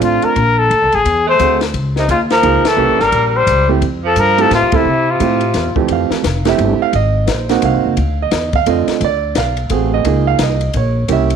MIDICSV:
0, 0, Header, 1, 7, 480
1, 0, Start_track
1, 0, Key_signature, -1, "major"
1, 0, Tempo, 346021
1, 985, Time_signature, 3, 2, 24, 8
1, 15756, End_track
2, 0, Start_track
2, 0, Title_t, "Trumpet"
2, 0, Program_c, 0, 56
2, 45, Note_on_c, 0, 65, 78
2, 339, Note_on_c, 0, 70, 90
2, 360, Note_off_c, 0, 65, 0
2, 811, Note_on_c, 0, 69, 88
2, 832, Note_off_c, 0, 70, 0
2, 1314, Note_on_c, 0, 68, 86
2, 1334, Note_off_c, 0, 69, 0
2, 1776, Note_off_c, 0, 68, 0
2, 1789, Note_on_c, 0, 72, 94
2, 2220, Note_off_c, 0, 72, 0
2, 2747, Note_on_c, 0, 63, 69
2, 2903, Note_off_c, 0, 63, 0
2, 2923, Note_on_c, 0, 65, 72
2, 3051, Note_off_c, 0, 65, 0
2, 3224, Note_on_c, 0, 70, 88
2, 3713, Note_on_c, 0, 69, 79
2, 3734, Note_off_c, 0, 70, 0
2, 4182, Note_on_c, 0, 70, 89
2, 4202, Note_off_c, 0, 69, 0
2, 4554, Note_off_c, 0, 70, 0
2, 4554, Note_on_c, 0, 70, 69
2, 4669, Note_on_c, 0, 72, 101
2, 4690, Note_off_c, 0, 70, 0
2, 5130, Note_off_c, 0, 72, 0
2, 5640, Note_on_c, 0, 69, 86
2, 5819, Note_on_c, 0, 70, 98
2, 5840, Note_off_c, 0, 69, 0
2, 6122, Note_on_c, 0, 69, 91
2, 6143, Note_off_c, 0, 70, 0
2, 6279, Note_off_c, 0, 69, 0
2, 6304, Note_on_c, 0, 65, 86
2, 6600, Note_on_c, 0, 64, 80
2, 6621, Note_off_c, 0, 65, 0
2, 7085, Note_on_c, 0, 65, 76
2, 7105, Note_off_c, 0, 64, 0
2, 8018, Note_off_c, 0, 65, 0
2, 15756, End_track
3, 0, Start_track
3, 0, Title_t, "Grand piano"
3, 0, Program_c, 1, 0
3, 0, Note_on_c, 1, 57, 75
3, 0, Note_on_c, 1, 60, 67
3, 0, Note_on_c, 1, 62, 66
3, 0, Note_on_c, 1, 65, 80
3, 460, Note_off_c, 1, 60, 0
3, 462, Note_off_c, 1, 57, 0
3, 465, Note_off_c, 1, 65, 0
3, 466, Note_off_c, 1, 62, 0
3, 1940, Note_on_c, 1, 57, 58
3, 1943, Note_on_c, 1, 60, 49
3, 1943, Note_on_c, 1, 66, 50
3, 1949, Note_on_c, 1, 68, 62
3, 2208, Note_off_c, 1, 57, 0
3, 2209, Note_off_c, 1, 60, 0
3, 2210, Note_off_c, 1, 66, 0
3, 2212, Note_off_c, 1, 68, 0
3, 3365, Note_on_c, 1, 63, 51
3, 3368, Note_on_c, 1, 58, 55
3, 3373, Note_on_c, 1, 65, 50
3, 3377, Note_on_c, 1, 68, 62
3, 3639, Note_off_c, 1, 63, 0
3, 3640, Note_off_c, 1, 58, 0
3, 3643, Note_off_c, 1, 65, 0
3, 3644, Note_off_c, 1, 68, 0
3, 3838, Note_on_c, 1, 58, 63
3, 3841, Note_on_c, 1, 61, 55
3, 3846, Note_on_c, 1, 64, 56
3, 3850, Note_on_c, 1, 67, 67
3, 4115, Note_off_c, 1, 58, 0
3, 4116, Note_off_c, 1, 61, 0
3, 4119, Note_off_c, 1, 64, 0
3, 4121, Note_off_c, 1, 67, 0
3, 5111, Note_on_c, 1, 57, 65
3, 5119, Note_on_c, 1, 60, 61
3, 5124, Note_on_c, 1, 64, 61
3, 5125, Note_on_c, 1, 67, 69
3, 5276, Note_off_c, 1, 57, 0
3, 5280, Note_off_c, 1, 60, 0
3, 5283, Note_off_c, 1, 64, 0
3, 5283, Note_off_c, 1, 67, 0
3, 6074, Note_on_c, 1, 57, 67
3, 6081, Note_on_c, 1, 60, 57
3, 6087, Note_on_c, 1, 64, 58
3, 6087, Note_on_c, 1, 67, 74
3, 6237, Note_off_c, 1, 57, 0
3, 6240, Note_off_c, 1, 60, 0
3, 6244, Note_off_c, 1, 64, 0
3, 6244, Note_off_c, 1, 67, 0
3, 6551, Note_on_c, 1, 57, 60
3, 6554, Note_on_c, 1, 60, 55
3, 6560, Note_on_c, 1, 64, 57
3, 6569, Note_on_c, 1, 69, 68
3, 6715, Note_off_c, 1, 57, 0
3, 6717, Note_off_c, 1, 60, 0
3, 6720, Note_off_c, 1, 64, 0
3, 6724, Note_off_c, 1, 69, 0
3, 7210, Note_on_c, 1, 57, 51
3, 7223, Note_on_c, 1, 60, 48
3, 7224, Note_on_c, 1, 64, 45
3, 7230, Note_on_c, 1, 67, 57
3, 7480, Note_off_c, 1, 57, 0
3, 7486, Note_off_c, 1, 60, 0
3, 7486, Note_off_c, 1, 64, 0
3, 7489, Note_off_c, 1, 67, 0
3, 7985, Note_on_c, 1, 41, 62
3, 7994, Note_on_c, 1, 57, 58
3, 7995, Note_on_c, 1, 60, 58
3, 7997, Note_on_c, 1, 67, 67
3, 7999, Note_on_c, 1, 52, 56
3, 8217, Note_on_c, 1, 77, 73
3, 8615, Note_off_c, 1, 41, 0
3, 8619, Note_off_c, 1, 57, 0
3, 8620, Note_off_c, 1, 60, 0
3, 8621, Note_off_c, 1, 67, 0
3, 8622, Note_off_c, 1, 52, 0
3, 8921, Note_off_c, 1, 77, 0
3, 8952, Note_on_c, 1, 57, 72
3, 8953, Note_on_c, 1, 60, 64
3, 8963, Note_on_c, 1, 64, 65
3, 8964, Note_on_c, 1, 67, 81
3, 8998, Note_on_c, 1, 76, 84
3, 9424, Note_off_c, 1, 76, 0
3, 9463, Note_on_c, 1, 77, 90
3, 9579, Note_off_c, 1, 57, 0
3, 9580, Note_off_c, 1, 60, 0
3, 9585, Note_off_c, 1, 64, 0
3, 9585, Note_off_c, 1, 67, 0
3, 9626, Note_off_c, 1, 77, 0
3, 9647, Note_on_c, 1, 75, 81
3, 10075, Note_on_c, 1, 71, 33
3, 10080, Note_off_c, 1, 75, 0
3, 10108, Note_off_c, 1, 71, 0
3, 10145, Note_on_c, 1, 72, 46
3, 10394, Note_on_c, 1, 60, 68
3, 10396, Note_on_c, 1, 58, 71
3, 10412, Note_on_c, 1, 63, 68
3, 10412, Note_on_c, 1, 66, 82
3, 10616, Note_on_c, 1, 77, 79
3, 10847, Note_off_c, 1, 72, 0
3, 11022, Note_off_c, 1, 60, 0
3, 11023, Note_off_c, 1, 58, 0
3, 11031, Note_off_c, 1, 63, 0
3, 11031, Note_off_c, 1, 66, 0
3, 11322, Note_off_c, 1, 77, 0
3, 11408, Note_on_c, 1, 75, 77
3, 11832, Note_off_c, 1, 75, 0
3, 11868, Note_on_c, 1, 77, 98
3, 12019, Note_on_c, 1, 57, 56
3, 12025, Note_on_c, 1, 50, 56
3, 12027, Note_on_c, 1, 60, 53
3, 12031, Note_off_c, 1, 77, 0
3, 12031, Note_on_c, 1, 65, 65
3, 12058, Note_on_c, 1, 75, 66
3, 12488, Note_off_c, 1, 75, 0
3, 12501, Note_off_c, 1, 57, 0
3, 12503, Note_off_c, 1, 50, 0
3, 12505, Note_off_c, 1, 60, 0
3, 12507, Note_off_c, 1, 65, 0
3, 12547, Note_on_c, 1, 74, 83
3, 13011, Note_on_c, 1, 77, 74
3, 13250, Note_off_c, 1, 74, 0
3, 13461, Note_on_c, 1, 57, 55
3, 13471, Note_on_c, 1, 60, 56
3, 13475, Note_on_c, 1, 66, 50
3, 13477, Note_on_c, 1, 68, 62
3, 13721, Note_off_c, 1, 77, 0
3, 13786, Note_on_c, 1, 75, 80
3, 13934, Note_off_c, 1, 68, 0
3, 13940, Note_on_c, 1, 58, 63
3, 13943, Note_off_c, 1, 57, 0
3, 13946, Note_on_c, 1, 65, 58
3, 13948, Note_off_c, 1, 60, 0
3, 13950, Note_off_c, 1, 66, 0
3, 13952, Note_on_c, 1, 63, 59
3, 13954, Note_on_c, 1, 68, 70
3, 14221, Note_off_c, 1, 75, 0
3, 14251, Note_on_c, 1, 77, 92
3, 14424, Note_off_c, 1, 77, 0
3, 14465, Note_on_c, 1, 75, 66
3, 14661, Note_off_c, 1, 58, 0
3, 14664, Note_off_c, 1, 65, 0
3, 14666, Note_off_c, 1, 63, 0
3, 14668, Note_off_c, 1, 68, 0
3, 14893, Note_off_c, 1, 75, 0
3, 14940, Note_on_c, 1, 73, 66
3, 15374, Note_on_c, 1, 58, 59
3, 15383, Note_on_c, 1, 61, 57
3, 15388, Note_on_c, 1, 67, 67
3, 15391, Note_on_c, 1, 64, 55
3, 15432, Note_on_c, 1, 76, 86
3, 15647, Note_off_c, 1, 58, 0
3, 15647, Note_off_c, 1, 73, 0
3, 15652, Note_off_c, 1, 61, 0
3, 15654, Note_off_c, 1, 67, 0
3, 15656, Note_off_c, 1, 64, 0
3, 15756, Note_off_c, 1, 76, 0
3, 15756, End_track
4, 0, Start_track
4, 0, Title_t, "Tenor saxophone"
4, 0, Program_c, 2, 66
4, 1758, Note_on_c, 2, 57, 75
4, 2204, Note_off_c, 2, 57, 0
4, 2731, Note_on_c, 2, 48, 57
4, 2894, Note_off_c, 2, 48, 0
4, 2904, Note_on_c, 2, 49, 58
4, 3037, Note_off_c, 2, 49, 0
4, 3198, Note_on_c, 2, 53, 74
4, 3677, Note_on_c, 2, 52, 79
4, 3698, Note_off_c, 2, 53, 0
4, 4160, Note_on_c, 2, 55, 78
4, 4181, Note_off_c, 2, 52, 0
4, 4503, Note_off_c, 2, 55, 0
4, 4503, Note_on_c, 2, 55, 57
4, 4637, Note_off_c, 2, 55, 0
4, 4637, Note_on_c, 2, 55, 81
4, 5114, Note_off_c, 2, 55, 0
4, 5611, Note_on_c, 2, 53, 74
4, 5794, Note_off_c, 2, 53, 0
4, 5794, Note_on_c, 2, 53, 77
4, 6108, Note_off_c, 2, 53, 0
4, 6108, Note_on_c, 2, 53, 74
4, 6272, Note_off_c, 2, 53, 0
4, 6304, Note_on_c, 2, 48, 70
4, 6608, Note_off_c, 2, 48, 0
4, 6608, Note_on_c, 2, 48, 73
4, 7078, Note_off_c, 2, 48, 0
4, 7078, Note_on_c, 2, 48, 67
4, 8015, Note_off_c, 2, 48, 0
4, 15756, End_track
5, 0, Start_track
5, 0, Title_t, "Upright bass"
5, 0, Program_c, 3, 32
5, 15, Note_on_c, 3, 33, 76
5, 296, Note_off_c, 3, 33, 0
5, 497, Note_on_c, 3, 34, 89
5, 966, Note_off_c, 3, 34, 0
5, 974, Note_on_c, 3, 38, 74
5, 1134, Note_off_c, 3, 38, 0
5, 1134, Note_on_c, 3, 36, 50
5, 1286, Note_off_c, 3, 36, 0
5, 1294, Note_on_c, 3, 33, 60
5, 1447, Note_off_c, 3, 33, 0
5, 1459, Note_on_c, 3, 40, 78
5, 1925, Note_off_c, 3, 40, 0
5, 1931, Note_on_c, 3, 38, 88
5, 2401, Note_off_c, 3, 38, 0
5, 2409, Note_on_c, 3, 37, 74
5, 2879, Note_off_c, 3, 37, 0
5, 2893, Note_on_c, 3, 39, 74
5, 3360, Note_off_c, 3, 39, 0
5, 3372, Note_on_c, 3, 37, 85
5, 3644, Note_off_c, 3, 37, 0
5, 3835, Note_on_c, 3, 36, 78
5, 4007, Note_off_c, 3, 36, 0
5, 4007, Note_on_c, 3, 34, 49
5, 4163, Note_off_c, 3, 34, 0
5, 4171, Note_on_c, 3, 31, 60
5, 4322, Note_off_c, 3, 31, 0
5, 4329, Note_on_c, 3, 34, 79
5, 4797, Note_off_c, 3, 34, 0
5, 4807, Note_on_c, 3, 37, 89
5, 5276, Note_off_c, 3, 37, 0
5, 5291, Note_on_c, 3, 41, 82
5, 5758, Note_off_c, 3, 41, 0
5, 5768, Note_on_c, 3, 43, 83
5, 6236, Note_off_c, 3, 43, 0
5, 6252, Note_on_c, 3, 45, 83
5, 6404, Note_on_c, 3, 41, 50
5, 6425, Note_off_c, 3, 45, 0
5, 6561, Note_off_c, 3, 41, 0
5, 6569, Note_on_c, 3, 40, 60
5, 6720, Note_off_c, 3, 40, 0
5, 6728, Note_on_c, 3, 48, 72
5, 7197, Note_off_c, 3, 48, 0
5, 7211, Note_on_c, 3, 45, 80
5, 7675, Note_off_c, 3, 45, 0
5, 7683, Note_on_c, 3, 40, 83
5, 7965, Note_off_c, 3, 40, 0
5, 8166, Note_on_c, 3, 41, 80
5, 8447, Note_off_c, 3, 41, 0
5, 8649, Note_on_c, 3, 29, 84
5, 9118, Note_off_c, 3, 29, 0
5, 9131, Note_on_c, 3, 31, 90
5, 9410, Note_off_c, 3, 31, 0
5, 9613, Note_on_c, 3, 32, 84
5, 10081, Note_off_c, 3, 32, 0
5, 10091, Note_on_c, 3, 34, 78
5, 10560, Note_off_c, 3, 34, 0
5, 10574, Note_on_c, 3, 36, 90
5, 10737, Note_on_c, 3, 32, 49
5, 10758, Note_off_c, 3, 36, 0
5, 10883, Note_off_c, 3, 32, 0
5, 10891, Note_on_c, 3, 30, 63
5, 11044, Note_off_c, 3, 30, 0
5, 11056, Note_on_c, 3, 38, 82
5, 11524, Note_off_c, 3, 38, 0
5, 11532, Note_on_c, 3, 40, 79
5, 12002, Note_off_c, 3, 40, 0
5, 12017, Note_on_c, 3, 41, 90
5, 12296, Note_off_c, 3, 41, 0
5, 12491, Note_on_c, 3, 38, 84
5, 12963, Note_off_c, 3, 38, 0
5, 12975, Note_on_c, 3, 35, 82
5, 13445, Note_off_c, 3, 35, 0
5, 13453, Note_on_c, 3, 33, 89
5, 13924, Note_off_c, 3, 33, 0
5, 13938, Note_on_c, 3, 37, 78
5, 14407, Note_off_c, 3, 37, 0
5, 14414, Note_on_c, 3, 36, 85
5, 14885, Note_off_c, 3, 36, 0
5, 14899, Note_on_c, 3, 34, 92
5, 15368, Note_off_c, 3, 34, 0
5, 15380, Note_on_c, 3, 36, 83
5, 15756, Note_off_c, 3, 36, 0
5, 15756, End_track
6, 0, Start_track
6, 0, Title_t, "Muted upright bass strokes"
6, 320, Note_on_c, 9, 29, 34
6, 459, Note_off_c, 9, 29, 0
6, 7984, Note_on_c, 9, 29, 38
6, 8123, Note_off_c, 9, 29, 0
6, 8467, Note_on_c, 9, 29, 38
6, 8606, Note_off_c, 9, 29, 0
6, 9429, Note_on_c, 9, 29, 37
6, 9568, Note_off_c, 9, 29, 0
6, 12307, Note_on_c, 9, 29, 37
6, 12446, Note_off_c, 9, 29, 0
6, 15756, End_track
7, 0, Start_track
7, 0, Title_t, "Drums"
7, 21, Note_on_c, 9, 36, 20
7, 22, Note_on_c, 9, 44, 46
7, 22, Note_on_c, 9, 51, 60
7, 160, Note_off_c, 9, 36, 0
7, 160, Note_off_c, 9, 44, 0
7, 160, Note_off_c, 9, 51, 0
7, 309, Note_on_c, 9, 51, 41
7, 448, Note_off_c, 9, 51, 0
7, 498, Note_on_c, 9, 51, 52
7, 500, Note_on_c, 9, 36, 20
7, 636, Note_off_c, 9, 51, 0
7, 639, Note_off_c, 9, 36, 0
7, 981, Note_on_c, 9, 36, 18
7, 982, Note_on_c, 9, 51, 53
7, 1120, Note_off_c, 9, 36, 0
7, 1121, Note_off_c, 9, 51, 0
7, 1281, Note_on_c, 9, 51, 42
7, 1420, Note_off_c, 9, 51, 0
7, 1463, Note_on_c, 9, 36, 19
7, 1464, Note_on_c, 9, 51, 60
7, 1602, Note_off_c, 9, 36, 0
7, 1603, Note_off_c, 9, 51, 0
7, 1934, Note_on_c, 9, 44, 50
7, 1934, Note_on_c, 9, 51, 58
7, 1939, Note_on_c, 9, 36, 24
7, 2073, Note_off_c, 9, 44, 0
7, 2073, Note_off_c, 9, 51, 0
7, 2077, Note_off_c, 9, 36, 0
7, 2233, Note_on_c, 9, 51, 42
7, 2237, Note_on_c, 9, 38, 45
7, 2372, Note_off_c, 9, 51, 0
7, 2376, Note_off_c, 9, 38, 0
7, 2413, Note_on_c, 9, 51, 59
7, 2417, Note_on_c, 9, 36, 22
7, 2552, Note_off_c, 9, 51, 0
7, 2555, Note_off_c, 9, 36, 0
7, 2721, Note_on_c, 9, 38, 36
7, 2860, Note_off_c, 9, 38, 0
7, 2897, Note_on_c, 9, 44, 48
7, 2897, Note_on_c, 9, 51, 58
7, 2898, Note_on_c, 9, 36, 19
7, 3035, Note_off_c, 9, 44, 0
7, 3035, Note_off_c, 9, 51, 0
7, 3036, Note_off_c, 9, 36, 0
7, 3196, Note_on_c, 9, 51, 41
7, 3200, Note_on_c, 9, 38, 53
7, 3335, Note_off_c, 9, 51, 0
7, 3339, Note_off_c, 9, 38, 0
7, 3373, Note_on_c, 9, 51, 55
7, 3376, Note_on_c, 9, 36, 18
7, 3511, Note_off_c, 9, 51, 0
7, 3515, Note_off_c, 9, 36, 0
7, 3675, Note_on_c, 9, 51, 57
7, 3679, Note_on_c, 9, 38, 74
7, 3813, Note_off_c, 9, 51, 0
7, 3817, Note_off_c, 9, 38, 0
7, 4157, Note_on_c, 9, 38, 30
7, 4295, Note_off_c, 9, 38, 0
7, 4332, Note_on_c, 9, 51, 60
7, 4334, Note_on_c, 9, 36, 21
7, 4471, Note_off_c, 9, 51, 0
7, 4473, Note_off_c, 9, 36, 0
7, 4815, Note_on_c, 9, 44, 52
7, 4815, Note_on_c, 9, 51, 73
7, 4817, Note_on_c, 9, 36, 20
7, 4954, Note_off_c, 9, 44, 0
7, 4954, Note_off_c, 9, 51, 0
7, 4956, Note_off_c, 9, 36, 0
7, 5296, Note_on_c, 9, 51, 58
7, 5298, Note_on_c, 9, 36, 19
7, 5435, Note_off_c, 9, 51, 0
7, 5437, Note_off_c, 9, 36, 0
7, 5771, Note_on_c, 9, 44, 59
7, 5771, Note_on_c, 9, 51, 61
7, 5777, Note_on_c, 9, 36, 23
7, 5909, Note_off_c, 9, 44, 0
7, 5909, Note_off_c, 9, 51, 0
7, 5916, Note_off_c, 9, 36, 0
7, 6079, Note_on_c, 9, 51, 43
7, 6218, Note_off_c, 9, 51, 0
7, 6258, Note_on_c, 9, 51, 62
7, 6259, Note_on_c, 9, 36, 26
7, 6262, Note_on_c, 9, 38, 37
7, 6397, Note_off_c, 9, 51, 0
7, 6398, Note_off_c, 9, 36, 0
7, 6401, Note_off_c, 9, 38, 0
7, 6546, Note_on_c, 9, 51, 65
7, 6555, Note_on_c, 9, 36, 70
7, 6684, Note_off_c, 9, 51, 0
7, 6694, Note_off_c, 9, 36, 0
7, 7215, Note_on_c, 9, 44, 52
7, 7215, Note_on_c, 9, 51, 63
7, 7217, Note_on_c, 9, 36, 25
7, 7354, Note_off_c, 9, 44, 0
7, 7354, Note_off_c, 9, 51, 0
7, 7356, Note_off_c, 9, 36, 0
7, 7499, Note_on_c, 9, 51, 43
7, 7638, Note_off_c, 9, 51, 0
7, 7684, Note_on_c, 9, 51, 58
7, 7688, Note_on_c, 9, 38, 37
7, 7692, Note_on_c, 9, 36, 17
7, 7822, Note_off_c, 9, 51, 0
7, 7826, Note_off_c, 9, 38, 0
7, 7831, Note_off_c, 9, 36, 0
7, 7989, Note_on_c, 9, 36, 50
7, 8128, Note_off_c, 9, 36, 0
7, 8162, Note_on_c, 9, 51, 58
7, 8171, Note_on_c, 9, 36, 21
7, 8301, Note_off_c, 9, 51, 0
7, 8310, Note_off_c, 9, 36, 0
7, 8471, Note_on_c, 9, 38, 47
7, 8610, Note_off_c, 9, 38, 0
7, 8655, Note_on_c, 9, 36, 18
7, 8658, Note_on_c, 9, 44, 51
7, 8658, Note_on_c, 9, 51, 64
7, 8662, Note_on_c, 9, 38, 65
7, 8794, Note_off_c, 9, 36, 0
7, 8796, Note_off_c, 9, 44, 0
7, 8796, Note_off_c, 9, 51, 0
7, 8800, Note_off_c, 9, 38, 0
7, 8950, Note_on_c, 9, 51, 46
7, 8954, Note_on_c, 9, 38, 51
7, 9088, Note_off_c, 9, 51, 0
7, 9092, Note_off_c, 9, 38, 0
7, 9134, Note_on_c, 9, 51, 57
7, 9136, Note_on_c, 9, 36, 23
7, 9273, Note_off_c, 9, 51, 0
7, 9274, Note_off_c, 9, 36, 0
7, 9614, Note_on_c, 9, 51, 59
7, 9618, Note_on_c, 9, 36, 23
7, 9753, Note_off_c, 9, 51, 0
7, 9757, Note_off_c, 9, 36, 0
7, 10093, Note_on_c, 9, 44, 52
7, 10093, Note_on_c, 9, 51, 60
7, 10097, Note_on_c, 9, 38, 69
7, 10099, Note_on_c, 9, 36, 22
7, 10231, Note_off_c, 9, 44, 0
7, 10231, Note_off_c, 9, 51, 0
7, 10236, Note_off_c, 9, 38, 0
7, 10238, Note_off_c, 9, 36, 0
7, 10394, Note_on_c, 9, 51, 47
7, 10398, Note_on_c, 9, 38, 42
7, 10532, Note_off_c, 9, 51, 0
7, 10537, Note_off_c, 9, 38, 0
7, 10571, Note_on_c, 9, 51, 64
7, 10579, Note_on_c, 9, 36, 18
7, 10710, Note_off_c, 9, 51, 0
7, 10718, Note_off_c, 9, 36, 0
7, 11055, Note_on_c, 9, 51, 59
7, 11060, Note_on_c, 9, 36, 23
7, 11194, Note_off_c, 9, 51, 0
7, 11199, Note_off_c, 9, 36, 0
7, 11534, Note_on_c, 9, 44, 54
7, 11534, Note_on_c, 9, 51, 67
7, 11538, Note_on_c, 9, 38, 69
7, 11540, Note_on_c, 9, 36, 24
7, 11672, Note_off_c, 9, 44, 0
7, 11672, Note_off_c, 9, 51, 0
7, 11677, Note_off_c, 9, 38, 0
7, 11679, Note_off_c, 9, 36, 0
7, 11834, Note_on_c, 9, 51, 44
7, 11838, Note_on_c, 9, 36, 64
7, 11972, Note_off_c, 9, 51, 0
7, 11977, Note_off_c, 9, 36, 0
7, 12018, Note_on_c, 9, 51, 61
7, 12020, Note_on_c, 9, 36, 21
7, 12156, Note_off_c, 9, 51, 0
7, 12159, Note_off_c, 9, 36, 0
7, 12315, Note_on_c, 9, 51, 45
7, 12320, Note_on_c, 9, 38, 40
7, 12454, Note_off_c, 9, 51, 0
7, 12458, Note_off_c, 9, 38, 0
7, 12495, Note_on_c, 9, 51, 60
7, 12500, Note_on_c, 9, 36, 20
7, 12634, Note_off_c, 9, 51, 0
7, 12639, Note_off_c, 9, 36, 0
7, 12974, Note_on_c, 9, 44, 59
7, 12974, Note_on_c, 9, 51, 67
7, 12978, Note_on_c, 9, 38, 64
7, 12979, Note_on_c, 9, 36, 21
7, 13112, Note_off_c, 9, 44, 0
7, 13112, Note_off_c, 9, 51, 0
7, 13116, Note_off_c, 9, 38, 0
7, 13118, Note_off_c, 9, 36, 0
7, 13272, Note_on_c, 9, 51, 45
7, 13411, Note_off_c, 9, 51, 0
7, 13451, Note_on_c, 9, 51, 63
7, 13459, Note_on_c, 9, 36, 19
7, 13590, Note_off_c, 9, 51, 0
7, 13598, Note_off_c, 9, 36, 0
7, 13937, Note_on_c, 9, 51, 62
7, 13941, Note_on_c, 9, 36, 24
7, 14076, Note_off_c, 9, 51, 0
7, 14080, Note_off_c, 9, 36, 0
7, 14409, Note_on_c, 9, 44, 60
7, 14409, Note_on_c, 9, 51, 75
7, 14413, Note_on_c, 9, 38, 68
7, 14420, Note_on_c, 9, 36, 23
7, 14548, Note_off_c, 9, 44, 0
7, 14548, Note_off_c, 9, 51, 0
7, 14552, Note_off_c, 9, 38, 0
7, 14559, Note_off_c, 9, 36, 0
7, 14714, Note_on_c, 9, 51, 46
7, 14853, Note_off_c, 9, 51, 0
7, 14892, Note_on_c, 9, 51, 64
7, 14901, Note_on_c, 9, 36, 26
7, 15031, Note_off_c, 9, 51, 0
7, 15040, Note_off_c, 9, 36, 0
7, 15376, Note_on_c, 9, 51, 68
7, 15383, Note_on_c, 9, 36, 20
7, 15515, Note_off_c, 9, 51, 0
7, 15521, Note_off_c, 9, 36, 0
7, 15678, Note_on_c, 9, 51, 50
7, 15756, Note_off_c, 9, 51, 0
7, 15756, End_track
0, 0, End_of_file